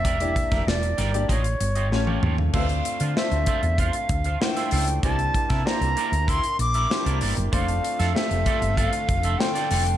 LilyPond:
<<
  \new Staff \with { instrumentName = "Bansuri" } { \time 4/4 \key d \minor \tempo 4 = 96 e''4 d''4 cis''4. r8 | f''4 e''4 f''4 g''4 | a''4 bes''4 c'''8 d'''4 r8 | f''4 e''4 f''4 g''4 | }
  \new Staff \with { instrumentName = "Clean electric guitar" } { \time 4/4 \key d \minor <g' bes' d''>16 r8 <g' bes' e''>16 r8 <g' bes' d''>16 r16 <eis' g' ees''>16 r8 <eis' g' ees''>16 r16 <eis' g' cis''>16 <eis' g' cis''>16 r16 | <f' c'' e''>16 r8 <f' c'' f''>16 r8 <f' c'' e''>16 r16 <f' c'' f''>16 r8 <f' c'' f''>16 r16 <f' c'' e''>16 <f' c'' e''>16 r16 | <e' bes' d''>16 r8 <e' bes' e''>16 r8 <e' bes' d''>16 r16 <e' bes' e''>16 r8 <e' bes' e''>16 r16 <e' bes' d''>16 <e' bes' d''>16 r16 | <f' a' d''>16 r8 <f' a' e''>16 r8 <f' a' d''>16 r16 <f' a' e''>16 r8 <f' a' e''>16 r16 <f' a' d''>16 <f' a' d''>16 r16 | }
  \new Staff \with { instrumentName = "Grand piano" } { \time 4/4 \key d \minor r16 <bes d' e' g' d''>4. <bes d' e' g' d''>16 r4 <a cis' eis' g' cis''>4 | <a c' d' f' b' c''>4 <a c' d' f' c''>2 <a d' e' f' c''>4 | <bes d' e' g' c''>4 <bes d' e' g' c''>2 <bes d' e' g' c''>4 | <a c' d' f' c''>4 <a c' d' f' g'>2 <a c' d' f' c''>4 | }
  \new Staff \with { instrumentName = "Analog synth pad" } { \time 4/4 \key d \minor r1 | r1 | r1 | <d a f'>1 | }
  \new Staff \with { instrumentName = "Fretless electric bass" } { \clef bass \time 4/4 \key d \minor e,,8. f,,16 e,,8 g,,8 a,,8 g,,8 a,,8 ees,8 | d,8 r16 d16 r16 d,16 r16 e,8 r16 d,8 r8 cis,8 | c,8 r16 c16 r16 c,16 r16 d,8 r16 bes,,8 r16 c,16 g,,16 fis,,16 | f,,8 r16 f,16 r16 f,,16 r16 g,,8 r16 f,,8 r8 f,,8 | }
  \new DrumStaff \with { instrumentName = "Drums" } \drummode { \time 4/4 <hh bd>16 hh16 <hh bd>16 <hh bd sn>16 sn16 hh16 <hh sn>16 hh16 <hh bd>16 hh16 hh16 hh16 sn16 tommh16 toml16 tomfh16 | <cymc bd>16 hh16 hh16 hh16 sn16 hh16 <hh bd>16 hh16 <hh bd>16 hh16 <hh bd>16 hh16 sn16 <hh sn>16 hho16 hh16 | <hh bd>16 hh16 <hh bd>16 <hh bd sn>16 sn16 hh16 hh16 hh16 <hh bd>16 hh16 hh16 hh16 sn16 hh16 hho16 hh16 | <hh bd>16 hh16 hh16 <hh sn>16 sn16 hh16 <hh bd>16 hh16 <hh bd>16 hh16 <hh bd>16 hh16 sn16 <hh sn>16 hho16 hh16 | }
>>